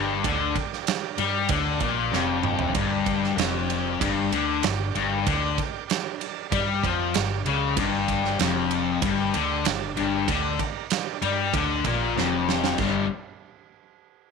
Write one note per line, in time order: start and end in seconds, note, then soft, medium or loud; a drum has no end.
0.00 0.22 G1 medium
0.00 0.24 G2 loud
0.00 0.18 G4 medium
0.00 0.19 A#4 medium
0.00 0.19 D5 medium
0.00 0.19 G5 loud
0.23 0.53 D2 medium
0.23 0.55 D3 loud
0.23 0.51 G4 loud
0.23 0.50 A#4 loud
0.23 0.51 D5 loud
0.23 0.51 A5 loud
0.23 kick loud
0.23 ride medium
0.51 0.81 G4 medium
0.51 0.80 A#4 medium
0.51 0.81 D5 medium
0.51 0.81 G5 loud
0.55 kick medium
0.55 ride medium
0.73 snare soft
0.81 1.12 G4 medium
0.81 1.12 A#4 medium
0.81 1.12 D5 medium
0.81 1.12 G5 loud
0.87 snare loud
0.87 ride medium
1.13 1.43 G4 medium
1.13 1.43 A#4 medium
1.13 1.43 D5 medium
1.13 1.44 G5 loud
1.13 1.45 A#5 medium
1.18 1.47 G2 medium
1.18 1.49 G3 loud
1.18 ride medium
1.44 1.75 G4 medium
1.44 1.74 A#4 medium
1.44 1.74 D5 medium
1.44 1.73 G5 medium
1.44 1.76 A5 medium
1.49 1.79 D2 medium
1.49 1.80 D3 loud
1.49 kick loud
1.49 ride medium
1.75 2.06 G4 loud
1.75 2.06 A#4 medium
1.75 2.06 D5 medium
1.75 1.92 F5 loud
1.75 1.92 G5 medium
1.80 2.10 A#1 medium
1.80 2.12 A#2 loud
1.80 kick medium
1.80 ride medium
1.93 2.09 F5 medium
2.10 2.71 F1 medium
2.10 2.74 F2 medium
2.10 2.39 G4 loud
2.10 2.39 A#4 loud
2.10 2.39 D5 loud
2.10 2.42 G5 loud
2.10 snare medium
2.43 2.71 G4 medium
2.43 2.72 A#4 medium
2.43 2.72 D5 medium
2.43 2.72 G5 medium
2.43 mid tom medium
2.59 floor tom medium
2.72 3.34 G1 medium
2.72 3.37 G2 loud
2.72 3.01 G4 loud
2.72 3.02 A#4 loud
2.72 3.02 D5 loud
2.72 3.02 A#5 loud
2.72 kick loud
2.72 ride medium
3.03 3.33 G4 medium
3.03 3.32 A#4 medium
3.03 3.33 D5 medium
3.03 3.33 G5 medium
3.03 kick medium
3.03 ride medium
3.24 snare soft
3.36 3.96 F1 medium
3.36 4.00 F2 medium
3.36 3.64 G4 medium
3.36 3.64 A#4 medium
3.36 3.65 D5 medium
3.36 3.65 G5 medium
3.36 snare loud
3.36 ride medium
3.65 3.95 G4 medium
3.65 3.95 A#4 medium
3.65 3.95 D5 medium
3.65 3.95 G5 medium
3.70 ride medium
4.00 4.30 G1 medium
4.00 4.31 G2 loud
4.00 4.28 G4 medium
4.00 4.28 A#4 medium
4.00 4.28 D5 medium
4.00 4.28 G5 medium
4.00 kick loud
4.00 ride loud
4.29 4.61 D2 medium
4.29 4.63 D3 loud
4.29 4.58 G4 loud
4.29 4.58 A#4 loud
4.29 4.58 D5 loud
4.29 4.58 G5 loud
4.29 ride medium
4.59 4.89 G4 loud
4.59 4.89 A#4 loud
4.59 4.89 D5 loud
4.59 4.89 G5 loud
4.63 4.93 G1 medium
4.63 4.89 G2 medium
4.63 snare loud
4.63 ride medium
4.90 5.20 G4 medium
4.90 5.21 A#4 medium
4.90 5.20 D5 medium
4.90 5.20 G5 loud
4.95 5.24 G1 medium
4.95 5.25 G2 loud
4.95 ride medium
5.22 5.52 G4 loud
5.22 5.53 A#4 loud
5.22 5.52 D5 loud
5.22 5.52 G5 loud
5.27 5.56 D2 medium
5.27 5.57 D3 loud
5.27 kick loud
5.27 ride medium
5.55 5.84 G4 medium
5.55 5.84 A#4 medium
5.55 5.84 D5 medium
5.55 5.84 G5 loud
5.55 kick medium
5.55 ride medium
5.87 6.16 G4 medium
5.87 6.16 A#4 medium
5.87 6.16 D5 medium
5.87 6.16 G5 medium
5.87 snare loud
5.87 ride medium
6.18 6.47 G4 medium
6.18 6.47 A#4 medium
6.18 6.48 D5 medium
6.18 6.48 A5 medium
6.18 ride medium
6.49 6.81 G2 medium
6.49 6.83 G3 loud
6.49 6.78 G4 medium
6.49 6.78 A#4 medium
6.49 6.78 D5 medium
6.49 6.78 F5 medium
6.49 kick loud
6.49 ride medium
6.82 7.13 F2 medium
6.82 7.14 F3 loud
6.82 7.10 G4 loud
6.82 7.10 A#4 medium
6.82 7.11 D5 medium
6.82 7.10 G5 loud
6.82 6.98 A#5 medium
6.82 kick medium
6.82 ride medium
7.01 7.15 A5 medium
7.14 7.44 G1 medium
7.14 7.40 G2 medium
7.14 7.42 G4 loud
7.14 7.42 A#4 loud
7.14 7.42 D5 loud
7.14 7.42 G5 loud
7.14 snare loud
7.14 ride medium
7.46 7.76 C#2 loud
7.46 7.76 C#3 loud
7.46 7.74 G4 medium
7.46 7.74 A#4 medium
7.46 7.74 D5 medium
7.46 7.76 F5 medium
7.46 7.74 G5 medium
7.46 ride medium
7.77 8.36 G1 loud
7.77 8.39 G2 loud
7.77 8.05 G4 loud
7.77 8.06 A#4 loud
7.77 8.05 D5 loud
7.77 8.05 G5 loud
7.77 kick loud
7.77 ride loud
8.08 8.37 G4 medium
8.08 8.37 A#4 medium
8.08 8.37 D5 medium
8.08 8.37 G5 medium
8.08 kick medium
8.08 ride medium
8.25 snare soft
8.38 8.99 F1 medium
8.38 9.02 F2 medium
8.38 8.67 G4 medium
8.38 8.66 A#4 medium
8.38 8.66 D5 medium
8.38 8.67 G5 loud
8.38 snare loud
8.38 ride medium
8.71 8.99 G4 medium
8.71 8.99 A#4 medium
8.71 8.99 D5 medium
8.71 8.99 A5 medium
8.71 ride medium
9.02 9.32 G1 medium
9.02 9.33 G2 loud
9.02 9.30 G4 medium
9.02 9.30 A#4 medium
9.02 9.30 D5 medium
9.02 9.31 G5 medium
9.02 kick loud
9.02 ride loud
9.34 9.64 D2 medium
9.34 9.65 D3 loud
9.34 9.61 G4 loud
9.34 9.61 A#4 medium
9.34 9.62 D5 loud
9.34 9.62 G5 loud
9.34 ride medium
9.62 9.90 G2 medium
9.62 9.92 G4 loud
9.62 9.91 A#4 loud
9.62 9.92 D5 loud
9.62 9.92 A5 loud
9.62 snare loud
9.62 ride loud
9.67 9.95 G1 medium
9.96 10.27 G1 medium
9.96 10.27 G2 loud
9.96 10.24 G4 medium
9.96 10.24 A#4 medium
9.96 10.24 D5 medium
9.96 10.24 G5 medium
9.96 ride medium
10.27 10.57 D2 loud
10.27 10.59 D3 loud
10.27 10.55 G4 loud
10.27 10.55 A#4 loud
10.27 10.55 D5 loud
10.27 10.55 G5 loud
10.27 kick loud
10.27 ride medium
10.59 10.87 G4 medium
10.59 10.86 A#4 medium
10.59 10.87 D5 medium
10.59 10.87 A#5 medium
10.59 kick medium
10.59 ride medium
10.90 11.18 G4 medium
10.90 11.19 A#4 medium
10.90 11.19 D5 medium
10.90 11.19 G5 loud
10.90 snare loud
10.90 ride medium
11.22 11.51 G2 medium
11.22 11.52 G3 loud
11.22 11.49 G4 medium
11.22 11.49 A#4 medium
11.22 11.50 D5 medium
11.22 11.50 A#5 loud
11.22 ride medium
11.53 11.83 D2 medium
11.53 11.84 D3 loud
11.53 11.81 G4 medium
11.53 11.81 A#4 medium
11.53 11.81 D5 medium
11.53 11.81 A5 loud
11.53 kick loud
11.53 ride medium
11.85 12.14 A#1 medium
11.85 12.15 A#2 loud
11.85 12.12 G4 loud
11.85 12.12 A#4 medium
11.85 12.13 D5 loud
11.85 12.13 F5 loud
11.85 kick medium
11.85 ride medium
12.15 12.75 F1 medium
12.15 12.78 F2 loud
12.15 12.43 G4 loud
12.15 12.43 A#4 loud
12.15 12.43 D5 loud
12.15 12.43 A5 loud
12.15 snare medium
12.46 12.75 G4 medium
12.46 12.74 A#4 medium
12.46 12.74 D5 medium
12.46 12.75 G5 medium
12.46 snare medium
12.64 snare medium
12.78 13.07 G1 medium
12.78 13.04 G2 medium
12.78 13.04 D3 medium
12.78 13.05 G3 loud
12.78 13.09 A4 medium
12.78 13.08 A#4 medium
12.78 13.08 D5 medium
12.78 13.08 F5 medium
12.78 kick loud
12.78 crash medium